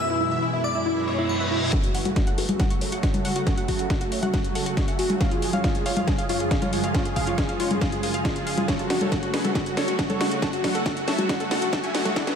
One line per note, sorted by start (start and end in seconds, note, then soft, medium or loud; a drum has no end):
0.00 0.14 F#2 medium
0.00 0.14 B2 medium
0.00 0.14 E3 medium
0.00 0.14 G#3 medium
0.00 0.14 E4 medium
0.00 0.56 E6 medium
0.10 0.19 E4 medium
0.10 0.19 E5 medium
0.20 0.36 F#2 medium
0.20 0.36 B2 medium
0.20 0.36 E3 medium
0.20 0.36 G#3 medium
0.20 0.36 E4 medium
0.20 0.30 E4 medium
0.31 0.41 E5 medium
0.42 0.57 F#2 medium
0.42 0.57 B2 medium
0.42 0.57 E3 medium
0.42 0.57 G#3 medium
0.42 0.57 E4 medium
0.42 0.52 E4 medium
0.42 0.52 E5 medium
0.53 0.62 E4 medium
0.53 0.63 E4 medium
0.64 0.73 D5 medium
0.64 1.21 D6 medium
0.75 0.90 F#2 medium
0.75 0.90 B2 medium
0.75 0.90 E3 medium
0.75 0.90 G#3 medium
0.75 0.84 E4 medium
0.75 0.90 E4 medium
0.75 0.84 E4 medium
0.75 0.85 E5 medium
0.86 0.95 E4 medium
0.86 reverse cymbal medium
0.97 1.04 F#2 medium
0.97 1.04 B2 medium
0.97 1.04 E3 medium
0.97 1.04 G#3 medium
0.97 1.04 E4 medium
0.97 1.06 E4 medium
1.07 1.15 F#2 medium
1.07 1.15 B2 medium
1.07 1.15 E3 medium
1.07 1.15 G#3 medium
1.07 1.15 E4 medium
1.07 1.17 C#5 medium
1.07 1.17 E5 medium
1.18 1.34 F#2 medium
1.18 1.33 B2 medium
1.18 1.34 E3 medium
1.18 1.34 G#3 medium
1.18 1.34 E4 medium
1.18 1.28 E4 medium
1.29 1.39 E4 medium
1.29 1.71 C#6 medium
1.40 1.48 F#2 medium
1.40 1.48 B2 medium
1.40 1.48 E3 medium
1.40 1.48 G#3 medium
1.40 1.48 E4 medium
1.40 1.49 B4 medium
1.40 1.50 E5 medium
1.51 1.66 F#2 medium
1.51 1.66 B2 medium
1.51 1.66 E3 medium
1.51 1.66 G#3 medium
1.51 1.66 E4 medium
1.51 1.60 E4 medium
1.51 1.61 E4 medium
1.51 1.60 E4 medium
1.62 1.71 E4 medium
1.73 1.88 C#3 medium
1.73 1.88 F#3 medium
1.73 1.88 A3 medium
1.73 1.88 F#4 medium
1.73 1.82 F#4 medium
1.73 1.82 A4 medium
1.73 1.82 C#5 medium
1.73 kick loud
1.73 snare soft
1.73 closed hi-hat medium
1.84 1.93 F#4 medium
1.84 closed hi-hat medium
1.94 2.10 C#3 medium
1.94 2.10 F#3 medium
1.94 2.10 A3 medium
1.94 2.10 F#4 medium
1.94 2.04 F#4 medium
1.94 2.04 F#5 medium
1.94 open hi-hat loud
2.05 2.15 F#4 medium
2.05 2.15 A4 medium
2.05 2.15 C#5 medium
2.05 closed hi-hat medium
2.05 high conga medium
2.16 2.31 C#3 medium
2.16 2.31 F#3 medium
2.16 2.31 A3 medium
2.16 2.31 F#4 medium
2.16 2.26 F#4 medium
2.16 kick loud
2.16 snare soft
2.16 closed hi-hat medium
2.27 2.36 F#4 medium
2.27 2.37 F#5 medium
2.27 closed hi-hat medium
2.38 2.48 F#4 medium
2.38 2.47 G#4 medium
2.38 2.47 B4 medium
2.38 open hi-hat loud
2.49 2.64 C#3 medium
2.49 2.64 F#3 medium
2.49 2.64 A3 medium
2.49 2.58 F#4 medium
2.49 2.64 F#4 medium
2.49 closed hi-hat medium
2.49 high conga medium
2.60 2.69 F#4 medium
2.60 2.69 F#5 medium
2.60 kick loud
2.60 snare soft
2.60 closed hi-hat medium
2.70 2.78 C#3 medium
2.70 2.78 F#3 medium
2.70 2.78 A3 medium
2.70 2.80 F#4 medium
2.70 2.78 F#4 medium
2.70 2.80 F#4 medium
2.70 closed hi-hat medium
2.81 2.89 C#3 medium
2.81 2.89 F#3 medium
2.81 2.89 A3 medium
2.81 2.89 F#4 medium
2.81 2.91 A4 medium
2.81 2.91 C#5 medium
2.81 open hi-hat loud
2.92 3.07 C#3 medium
2.92 3.07 F#3 medium
2.92 3.07 A3 medium
2.92 3.07 F#4 medium
2.92 3.02 F#4 medium
2.92 3.02 F#5 medium
2.92 closed hi-hat medium
3.03 3.12 F#4 medium
3.03 3.13 F#4 medium
3.03 kick loud
3.03 snare soft
3.03 closed hi-hat medium
3.14 3.22 C#3 medium
3.14 3.22 F#3 medium
3.14 3.22 A3 medium
3.14 3.22 F#4 medium
3.14 3.23 A4 medium
3.14 3.23 C#5 medium
3.14 closed hi-hat medium
3.14 high conga medium
3.25 3.40 C#3 medium
3.25 3.40 F#3 medium
3.25 3.40 A3 medium
3.25 3.40 F#4 medium
3.25 3.34 F#4 medium
3.25 3.35 F#5 medium
3.25 open hi-hat loud
3.36 3.45 F#4 medium
3.36 closed hi-hat medium
3.46 3.62 C#3 medium
3.46 3.62 F#3 medium
3.46 3.62 A3 medium
3.46 3.62 F#4 medium
3.46 3.56 A4 medium
3.46 3.56 F#5 medium
3.46 kick loud
3.46 snare medium
3.46 closed hi-hat medium
3.57 3.67 F#4 medium
3.57 3.67 F#5 medium
3.57 closed hi-hat medium
3.68 3.83 C#3 medium
3.68 3.83 F#3 medium
3.68 3.83 A3 medium
3.68 3.83 F#4 medium
3.68 3.78 F#4 medium
3.68 kick medium
3.68 open hi-hat loud
3.79 3.89 A4 medium
3.79 3.89 F#5 medium
3.79 closed hi-hat medium
3.90 4.05 C#3 medium
3.90 4.05 F#3 medium
3.90 4.05 A3 medium
3.90 3.99 F#4 medium
3.90 4.05 F#4 medium
3.90 4.00 F#5 medium
3.90 kick loud
3.90 snare medium
3.90 closed hi-hat medium
4.01 4.10 F#4 medium
4.01 4.11 F#4 medium
4.01 closed hi-hat medium
4.12 4.21 C#5 medium
4.12 4.21 E5 medium
4.12 open hi-hat loud
4.23 4.38 C#3 medium
4.23 4.38 F#3 medium
4.23 4.38 A3 medium
4.23 4.38 F#4 medium
4.23 4.32 F#4 medium
4.23 4.32 F#5 medium
4.23 closed hi-hat medium
4.23 high conga medium
4.34 4.43 F#4 medium
4.34 kick loud
4.34 snare medium
4.34 closed hi-hat medium
4.44 4.52 C#3 medium
4.44 4.52 F#3 medium
4.44 4.52 A3 medium
4.44 4.52 F#4 medium
4.44 4.54 F#4 medium
4.44 closed hi-hat medium
4.55 4.63 C#3 medium
4.55 4.63 F#3 medium
4.55 4.63 A3 medium
4.55 4.63 F#4 medium
4.55 4.65 A4 medium
4.55 4.65 F#5 medium
4.55 open hi-hat loud
4.66 4.81 C#3 medium
4.66 4.81 F#3 medium
4.66 4.81 A3 medium
4.66 4.81 F#4 medium
4.66 4.76 F#4 medium
4.66 closed hi-hat medium
4.77 4.86 F#4 medium
4.77 kick loud
4.77 snare medium
4.77 closed hi-hat medium
4.88 4.95 C#3 medium
4.88 4.95 F#3 medium
4.88 4.95 A3 medium
4.88 4.95 F#4 medium
4.88 4.97 E5 medium
4.88 4.98 F#5 medium
4.88 4.97 G#5 medium
4.88 closed hi-hat medium
4.99 5.14 C#3 medium
4.99 5.14 F#3 medium
4.99 5.14 A3 medium
4.99 5.14 F#4 medium
4.99 5.08 F#4 medium
4.99 open hi-hat loud
5.10 5.19 F#4 medium
5.10 closed hi-hat medium
5.10 high conga medium
5.21 5.36 F#2 medium
5.21 5.36 C#3 medium
5.21 5.36 F3 medium
5.21 5.36 G#3 medium
5.21 5.36 F4 medium
5.21 5.30 C#5 medium
5.21 5.30 F5 medium
5.21 kick loud
5.21 snare medium
5.21 closed hi-hat medium
5.31 5.41 F4 medium
5.31 5.41 G#4 medium
5.31 closed hi-hat medium
5.42 5.58 F#2 medium
5.42 5.57 C#3 medium
5.42 5.57 F3 medium
5.42 5.57 G#3 medium
5.42 5.58 F4 medium
5.42 5.52 G#4 medium
5.42 open hi-hat loud
5.53 5.63 C#5 medium
5.53 5.63 F5 medium
5.53 closed hi-hat medium
5.53 high conga medium
5.64 5.79 F#2 medium
5.64 5.79 C#3 medium
5.64 5.79 F3 medium
5.64 5.79 G#3 medium
5.64 5.79 F4 medium
5.64 5.74 F4 medium
5.64 5.74 G#4 medium
5.64 kick loud
5.64 snare medium
5.64 closed hi-hat medium
5.75 5.84 G#4 medium
5.75 closed hi-hat medium
5.86 5.95 F4 medium
5.86 5.95 C#5 medium
5.86 5.95 F5 medium
5.86 open hi-hat loud
5.96 6.12 F#2 medium
5.96 6.12 C#3 medium
5.96 6.12 F3 medium
5.96 6.12 G#3 medium
5.96 6.12 F4 medium
5.96 6.06 F4 medium
5.96 6.06 G#4 medium
5.96 closed hi-hat medium
5.96 high conga medium
6.08 6.17 G#4 medium
6.08 kick loud
6.08 snare medium
6.08 closed hi-hat medium
6.18 6.26 F#2 medium
6.18 6.26 C#3 medium
6.18 6.26 F3 medium
6.18 6.26 G#3 medium
6.18 6.26 F4 medium
6.18 6.28 G#4 medium
6.18 6.28 F5 medium
6.18 closed hi-hat medium
6.29 6.37 F#2 medium
6.29 6.37 C#3 medium
6.29 6.37 F3 medium
6.29 6.37 G#3 medium
6.29 6.37 F4 medium
6.29 6.39 F4 medium
6.29 6.39 C#5 medium
6.29 6.39 F5 medium
6.29 open hi-hat loud
6.40 6.55 F#2 medium
6.40 6.55 C#3 medium
6.40 6.55 F3 medium
6.40 6.55 G#3 medium
6.40 6.55 F4 medium
6.40 6.50 G#4 medium
6.40 closed hi-hat medium
6.51 6.60 G#4 medium
6.51 6.61 F5 medium
6.51 kick loud
6.51 snare medium
6.51 closed hi-hat medium
6.62 6.69 F#2 medium
6.62 6.69 C#3 medium
6.62 6.69 F3 medium
6.62 6.69 G#3 medium
6.62 6.69 F4 medium
6.62 6.72 F4 medium
6.62 6.71 C#5 medium
6.62 6.71 F5 medium
6.62 closed hi-hat medium
6.62 high conga medium
6.73 6.88 F#2 medium
6.73 6.88 C#3 medium
6.73 6.88 F3 medium
6.73 6.88 G#3 medium
6.73 6.88 F4 medium
6.73 6.82 G#4 medium
6.73 open hi-hat loud
6.84 6.93 G#4 medium
6.84 6.93 F5 medium
6.84 closed hi-hat medium
6.94 7.10 F#2 medium
6.94 7.10 C#3 medium
6.94 7.10 F3 medium
6.94 7.10 G#3 medium
6.94 7.10 F4 medium
6.94 7.04 F4 medium
6.94 7.04 C#5 medium
6.94 7.04 F5 loud
6.94 kick loud
6.94 snare medium
6.94 closed hi-hat medium
7.05 7.15 G#4 medium
7.05 closed hi-hat medium
7.16 7.31 F#2 medium
7.16 7.31 C#3 medium
7.16 7.31 F3 medium
7.16 7.31 G#3 medium
7.16 7.31 F4 medium
7.16 7.26 G#4 medium
7.16 7.26 F5 medium
7.16 kick medium
7.16 open hi-hat loud
7.27 7.37 F4 medium
7.27 7.37 C#5 medium
7.27 7.37 F5 medium
7.27 closed hi-hat medium
7.38 7.53 F#2 medium
7.38 7.53 C#3 medium
7.38 7.53 F3 medium
7.38 7.53 G#3 medium
7.38 7.53 F4 medium
7.38 7.47 G#4 medium
7.38 kick loud
7.38 snare medium
7.38 closed hi-hat medium
7.49 7.58 G#4 medium
7.49 7.58 F5 medium
7.49 closed hi-hat medium
7.60 7.69 F4 medium
7.60 7.69 C#5 medium
7.60 open hi-hat loud
7.71 7.86 F#2 medium
7.71 7.86 C#3 medium
7.71 7.86 F3 medium
7.71 7.86 G#3 medium
7.71 7.86 F4 medium
7.71 7.80 G#4 medium
7.71 closed hi-hat medium
7.71 high conga medium
7.81 7.91 G#4 medium
7.81 7.91 F5 medium
7.81 kick loud
7.81 snare medium
7.81 closed hi-hat medium
7.92 8.00 F#2 medium
7.92 8.00 C#3 medium
7.92 8.00 F3 medium
7.92 8.00 G#3 medium
7.92 8.00 F4 medium
7.92 8.02 F4 medium
7.92 8.02 G#4 medium
7.92 closed hi-hat medium
8.03 8.11 F#2 medium
8.03 8.11 C#3 medium
8.03 8.11 F3 medium
8.03 8.11 G#3 medium
8.03 8.13 F4 medium
8.03 8.11 F4 medium
8.03 8.13 G#4 medium
8.03 open hi-hat loud
8.14 8.29 F#2 medium
8.14 8.29 C#3 medium
8.14 8.29 F3 medium
8.14 8.29 G#3 medium
8.14 8.29 F4 medium
8.14 8.23 G#4 medium
8.14 8.24 F5 medium
8.14 closed hi-hat medium
8.25 8.34 F4 medium
8.25 8.34 G#4 medium
8.25 kick loud
8.25 snare medium
8.25 closed hi-hat medium
8.36 8.43 F#2 medium
8.36 8.43 C#3 medium
8.36 8.43 F3 medium
8.36 8.43 G#3 medium
8.36 8.43 F4 medium
8.36 8.45 F4 medium
8.36 8.45 G#4 medium
8.36 closed hi-hat medium
8.47 8.62 F#2 medium
8.47 8.62 C#3 medium
8.47 8.62 F3 medium
8.47 8.62 G#3 medium
8.47 8.62 F4 medium
8.47 8.56 G#4 medium
8.47 8.56 F5 medium
8.47 open hi-hat loud
8.58 8.67 F4 medium
8.58 8.67 G#4 medium
8.58 closed hi-hat medium
8.58 high conga medium
8.68 8.84 C#3 medium
8.68 8.84 F#3 medium
8.68 8.84 A3 medium
8.68 8.84 F#4 medium
8.68 8.78 A4 medium
8.68 8.78 C#5 loud
8.68 kick loud
8.68 snare medium
8.68 closed hi-hat medium
8.68 riser medium
8.79 8.89 F#4 medium
8.79 8.86 A4 medium
8.79 closed hi-hat medium
8.90 9.05 C#3 medium
8.90 9.05 F#3 medium
8.90 9.05 A3 medium
8.90 9.00 F#4 medium
8.90 9.05 F#4 medium
8.90 9.00 F#4 medium
8.90 snare medium
8.90 open hi-hat loud
9.01 9.10 A4 medium
9.01 9.11 C#5 medium
9.01 closed hi-hat medium
9.01 high conga medium
9.12 9.27 C#3 medium
9.12 9.27 F#3 medium
9.12 9.27 A3 medium
9.12 9.21 F#4 medium
9.12 9.27 F#4 medium
9.12 9.18 A4 medium
9.12 kick loud
9.12 snare medium
9.12 closed hi-hat medium
9.23 9.32 F#4 medium
9.23 closed hi-hat medium
9.34 9.43 G#4 medium
9.34 9.43 B4 medium
9.34 snare medium
9.34 open hi-hat loud
9.44 9.60 C#3 medium
9.44 9.60 F#3 medium
9.44 9.60 A3 medium
9.44 9.54 F#4 medium
9.44 9.60 F#4 medium
9.44 9.51 A4 medium
9.44 closed hi-hat medium
9.44 high conga medium
9.55 9.65 F#4 medium
9.55 kick loud
9.55 snare medium
9.55 closed hi-hat medium
9.66 9.74 C#3 medium
9.66 9.74 F#3 medium
9.66 9.74 A3 medium
9.66 9.76 F#4 medium
9.66 9.74 F#4 medium
9.66 closed hi-hat medium
9.77 9.85 C#3 medium
9.77 9.85 F#3 medium
9.77 9.85 A3 medium
9.77 9.85 F#4 medium
9.77 9.83 A4 medium
9.77 9.86 A4 medium
9.77 9.86 C#5 loud
9.77 snare medium
9.77 open hi-hat loud
9.88 10.03 C#3 medium
9.88 10.03 F#3 medium
9.88 10.03 A3 medium
9.88 9.97 F#4 medium
9.88 9.98 F#4 medium
9.88 10.03 F#4 medium
9.88 closed hi-hat medium
9.99 10.08 F#4 medium
9.99 kick loud
9.99 snare medium
9.99 closed hi-hat medium
10.10 10.17 C#3 medium
10.10 10.17 F#3 medium
10.10 10.17 A3 medium
10.10 10.17 F#4 medium
10.10 10.16 A4 medium
10.10 10.19 A4 medium
10.10 10.19 C#5 medium
10.10 closed hi-hat medium
10.10 high conga medium
10.20 10.36 C#3 medium
10.20 10.36 F#3 medium
10.20 10.36 A3 medium
10.20 10.36 F#4 medium
10.20 10.30 F#4 medium
10.20 snare medium
10.20 open hi-hat loud
10.31 10.41 F#4 medium
10.31 closed hi-hat medium
10.42 10.57 C#3 medium
10.42 10.57 F#3 medium
10.42 10.57 A3 medium
10.42 10.57 F#4 medium
10.42 10.52 A4 medium
10.42 10.49 A4 medium
10.42 10.52 F#5 medium
10.42 kick loud
10.42 snare medium
10.42 closed hi-hat medium
10.53 10.63 F#4 medium
10.53 closed hi-hat medium
10.64 10.79 C#3 medium
10.64 10.79 F#3 loud
10.64 10.79 A3 medium
10.64 10.79 F#4 medium
10.64 10.73 F#4 medium
10.64 kick medium
10.64 snare medium
10.64 open hi-hat loud
10.75 10.81 A4 medium
10.75 10.84 A4 medium
10.75 10.84 F#5 medium
10.75 closed hi-hat medium
10.86 11.01 C#3 medium
10.86 11.01 F#3 medium
10.86 11.01 A3 medium
10.86 10.95 F#4 medium
10.86 11.01 F#4 medium
10.86 10.95 F#4 medium
10.86 kick loud
10.86 snare medium
10.86 closed hi-hat medium
10.97 11.06 F#4 medium
10.97 closed hi-hat medium
11.07 11.14 A4 medium
11.07 11.17 C#5 medium
11.07 11.17 E5 loud
11.07 snare medium
11.07 open hi-hat loud
11.18 11.34 C#3 medium
11.18 11.34 F#3 medium
11.18 11.34 A3 medium
11.18 11.34 F#4 medium
11.18 11.28 F#4 medium
11.18 closed hi-hat medium
11.18 high conga medium
11.29 11.39 F#4 medium
11.29 kick loud
11.29 snare medium
11.29 closed hi-hat medium
11.40 11.48 C#3 medium
11.40 11.48 F#3 medium
11.40 11.48 A3 medium
11.40 11.48 F#4 medium
11.40 11.50 F#4 medium
11.40 11.47 A4 medium
11.40 closed hi-hat medium
11.51 11.59 C#3 medium
11.51 11.59 F#3 medium
11.51 11.59 A3 medium
11.51 11.61 F#4 medium
11.51 11.59 F#4 medium
11.51 11.60 A4 medium
11.51 11.60 F#5 loud
11.51 snare medium
11.51 open hi-hat loud
11.62 11.77 C#3 medium
11.62 11.77 F#3 medium
11.62 11.77 A3 medium
11.62 11.77 F#4 medium
11.62 11.71 F#4 medium
11.62 closed hi-hat medium
11.73 11.82 F#4 medium
11.73 11.79 A4 medium
11.73 kick loud
11.73 snare medium
11.73 closed hi-hat medium
11.83 11.91 C#3 medium
11.83 11.91 F#3 medium
11.83 11.91 A3 medium
11.83 11.91 F#4 medium
11.83 11.93 F#4 medium
11.83 11.93 E5 medium
11.83 11.93 G#5 medium
11.83 closed hi-hat medium
11.94 12.10 C#3 medium
11.94 12.10 F#3 medium
11.94 12.10 A3 medium
11.94 12.10 F#4 medium
11.94 12.04 F#4 medium
11.94 snare medium
11.94 open hi-hat loud
12.05 12.15 F#4 medium
12.05 12.12 A4 medium
12.05 closed hi-hat medium
12.05 high conga medium
12.16 12.31 F#2 medium
12.16 12.31 E3 medium
12.16 12.31 G#3 medium
12.16 12.31 B3 medium
12.16 12.26 E4 medium
12.16 12.31 G#4 medium
12.16 12.26 D5 medium
12.16 12.26 F#5 medium
12.16 kick loud
12.16 snare medium
12.16 closed hi-hat medium
12.27 12.35 B4 medium
12.27 snare medium
12.27 closed hi-hat medium